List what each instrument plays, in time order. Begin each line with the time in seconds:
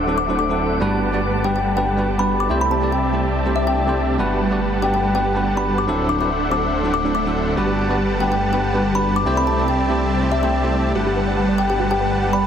Already playing: detuned saw bass D1, supersaw synth D4 A4 C5 E5 F#5, ambient pad F#5
0.07 tine electric piano F#3 C4 D4 E4 A4
0.18 kalimba D6
0.28 tine electric piano F#3 C4 D4 E4 A4
0.39 kalimba D6
0.49 tine electric piano F#3 C4 D4 E4 A4
0.80 detuned saw bass G1, tine electric piano G3 B3 D4 F#4 B4, supersaw synth G3 G4 B4 F#5 A5, ambient pad G3 D4
1.12 tine electric piano G3 B3 D4 F#4 D5
1.43 tine electric piano G3 B3 D4 F#4 B4, kalimba G5
1.56 kalimba G5
1.76 tine electric piano G3 B3 D4 F#4 B4, kalimba G5
1.97 tine electric piano G3 B3 D4 F#4 B4
2.18 tine electric piano G3 B3 D4 F#4 B4, kalimba B5
2.40 kalimba D6
2.49 detuned saw bass C2, tine electric piano A3 C4 E4 G4 C5, supersaw synth C4 G4 D5 E5 A5
2.61 kalimba B5
2.71 kalimba A5
2.81 tine electric piano A3 C4 E4 G4 D5
2.92 kalimba G5
3.12 tine electric piano A3 C4 E4 G4 C5
3.45 tine electric piano A3 C4 E4 G4 C5
3.56 kalimba E5
3.67 kalimba G5
3.87 tine electric piano A3 C4 E4 G4 C5
4.18 detuned saw bass G1, tine electric piano G3 B3 D4 F#4 B4, supersaw synth G3 G4 B4 F#5 A5, ambient pad F#5
4.50 tine electric piano G3 B3 D4 F#4 D5
4.81 tine electric piano G3 B3 D4 F#4 B4, kalimba G5
4.94 kalimba G5
5.14 tine electric piano G3 B3 D4 F#4 B4, kalimba G5
5.35 tine electric piano G3 B3 D4 F#4 B4
5.56 tine electric piano G3 B3 D4 F#4 B4, kalimba B5
5.78 kalimba D6
5.87 detuned saw bass D1, tine electric piano F#3 C4 D4 E4 A4, supersaw synth D4 A4 C5 E5 F#5
6.09 kalimba D6
6.19 tine electric piano F#3 C4 D4 E4 B4, kalimba D6
6.50 tine electric piano F#3 C4 D4 E4 A4, kalimba D6
6.83 tine electric piano F#3 C4 D4 E4 A4
6.94 kalimba D6
7.04 tine electric piano F#3 C4 D4 E4 A4
7.15 kalimba D6
7.25 tine electric piano F#3 C4 D4 E4 A4
7.56 detuned saw bass G1, tine electric piano G3 B3 D4 F#4 B4, supersaw synth G3 G4 B4 F#5 A5, ambient pad G3 D4
7.89 tine electric piano G3 B3 D4 F#4 D5
8.19 tine electric piano G3 B3 D4 F#4 B4, kalimba G5
8.32 kalimba G5
8.52 tine electric piano G3 B3 D4 F#4 B4, kalimba G5
8.73 tine electric piano G3 B3 D4 F#4 B4
8.94 tine electric piano G3 B3 D4 F#4 B4, kalimba B5
9.16 kalimba D6
9.25 detuned saw bass C2, tine electric piano A3 C4 E4 G4 C5, supersaw synth C4 G4 D5 E5 A5
9.37 kalimba B5
9.47 kalimba A5
9.57 tine electric piano A3 C4 E4 G4 D5
9.68 kalimba G5
9.88 tine electric piano A3 C4 E4 G4 C5
10.21 tine electric piano A3 C4 E4 G4 C5
10.32 kalimba E5
10.42 tine electric piano A3 C4 E4 G4 C5, kalimba G5
10.63 tine electric piano A3 C4 E4 G4 C5
10.95 detuned saw bass G1, supersaw synth G3 G4 B4 F#5 A5, synth arpeggio sound F#4
11.06 synth arpeggio sound G4
11.16 synth arpeggio sound B4
11.27 synth arpeggio sound D5
11.37 synth arpeggio sound F#5
11.49 synth arpeggio sound D5
11.58 synth arpeggio sound D5, kalimba G5
11.70 synth arpeggio sound G4, kalimba G5
11.79 synth arpeggio sound F#4
11.91 synth arpeggio sound G4, kalimba G5
12.01 synth arpeggio sound B4
12.12 synth arpeggio sound B4
12.22 synth arpeggio sound F#5
12.33 synth arpeggio sound D5, kalimba B5
12.43 synth arpeggio sound B4